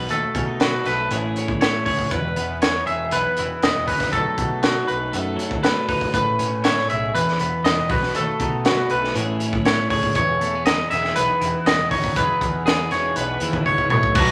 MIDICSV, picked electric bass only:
0, 0, Header, 1, 2, 480
1, 0, Start_track
1, 0, Key_signature, 4, "major"
1, 0, Tempo, 501672
1, 97, Time_signature, 4, 2, 24, 8
1, 13697, End_track
2, 0, Start_track
2, 0, Title_t, "Picked electric bass"
2, 0, Program_c, 0, 34
2, 91, Note_on_c, 0, 39, 89
2, 196, Note_off_c, 0, 39, 0
2, 335, Note_on_c, 0, 47, 70
2, 745, Note_off_c, 0, 47, 0
2, 818, Note_on_c, 0, 35, 81
2, 1024, Note_off_c, 0, 35, 0
2, 1061, Note_on_c, 0, 33, 92
2, 1266, Note_off_c, 0, 33, 0
2, 2027, Note_on_c, 0, 28, 94
2, 2231, Note_off_c, 0, 28, 0
2, 2260, Note_on_c, 0, 40, 86
2, 2671, Note_off_c, 0, 40, 0
2, 2737, Note_on_c, 0, 28, 72
2, 2946, Note_off_c, 0, 28, 0
2, 2988, Note_on_c, 0, 35, 88
2, 3091, Note_off_c, 0, 35, 0
2, 3234, Note_on_c, 0, 28, 93
2, 3335, Note_off_c, 0, 28, 0
2, 3470, Note_on_c, 0, 28, 77
2, 3573, Note_off_c, 0, 28, 0
2, 3600, Note_on_c, 0, 28, 72
2, 3698, Note_off_c, 0, 28, 0
2, 3707, Note_on_c, 0, 33, 87
2, 3913, Note_off_c, 0, 33, 0
2, 3953, Note_on_c, 0, 35, 91
2, 4055, Note_off_c, 0, 35, 0
2, 4191, Note_on_c, 0, 47, 72
2, 4599, Note_off_c, 0, 47, 0
2, 4683, Note_on_c, 0, 35, 77
2, 4883, Note_off_c, 0, 35, 0
2, 4920, Note_on_c, 0, 42, 96
2, 5121, Note_off_c, 0, 42, 0
2, 5873, Note_on_c, 0, 33, 94
2, 6077, Note_off_c, 0, 33, 0
2, 6117, Note_on_c, 0, 45, 85
2, 6522, Note_off_c, 0, 45, 0
2, 6604, Note_on_c, 0, 35, 77
2, 6803, Note_off_c, 0, 35, 0
2, 6830, Note_on_c, 0, 28, 84
2, 6934, Note_off_c, 0, 28, 0
2, 7069, Note_on_c, 0, 28, 85
2, 7173, Note_off_c, 0, 28, 0
2, 7308, Note_on_c, 0, 28, 85
2, 7413, Note_off_c, 0, 28, 0
2, 7443, Note_on_c, 0, 28, 77
2, 7541, Note_off_c, 0, 28, 0
2, 7558, Note_on_c, 0, 35, 89
2, 7759, Note_off_c, 0, 35, 0
2, 7800, Note_on_c, 0, 39, 86
2, 7899, Note_off_c, 0, 39, 0
2, 8041, Note_on_c, 0, 47, 77
2, 8443, Note_off_c, 0, 47, 0
2, 8517, Note_on_c, 0, 35, 80
2, 8718, Note_off_c, 0, 35, 0
2, 8749, Note_on_c, 0, 33, 100
2, 8953, Note_off_c, 0, 33, 0
2, 9722, Note_on_c, 0, 28, 93
2, 9920, Note_off_c, 0, 28, 0
2, 9956, Note_on_c, 0, 40, 89
2, 10359, Note_off_c, 0, 40, 0
2, 10443, Note_on_c, 0, 28, 82
2, 10640, Note_off_c, 0, 28, 0
2, 10684, Note_on_c, 0, 35, 83
2, 10779, Note_off_c, 0, 35, 0
2, 10921, Note_on_c, 0, 28, 90
2, 11017, Note_off_c, 0, 28, 0
2, 11158, Note_on_c, 0, 28, 85
2, 11255, Note_off_c, 0, 28, 0
2, 11272, Note_on_c, 0, 28, 79
2, 11371, Note_off_c, 0, 28, 0
2, 11400, Note_on_c, 0, 32, 89
2, 11597, Note_off_c, 0, 32, 0
2, 11640, Note_on_c, 0, 28, 94
2, 11735, Note_off_c, 0, 28, 0
2, 11879, Note_on_c, 0, 40, 80
2, 12277, Note_off_c, 0, 40, 0
2, 12355, Note_on_c, 0, 28, 82
2, 12552, Note_off_c, 0, 28, 0
2, 12588, Note_on_c, 0, 35, 105
2, 12787, Note_off_c, 0, 35, 0
2, 12834, Note_on_c, 0, 39, 84
2, 13042, Note_off_c, 0, 39, 0
2, 13070, Note_on_c, 0, 37, 78
2, 13279, Note_off_c, 0, 37, 0
2, 13306, Note_on_c, 0, 35, 77
2, 13516, Note_off_c, 0, 35, 0
2, 13546, Note_on_c, 0, 35, 112
2, 13697, Note_off_c, 0, 35, 0
2, 13697, End_track
0, 0, End_of_file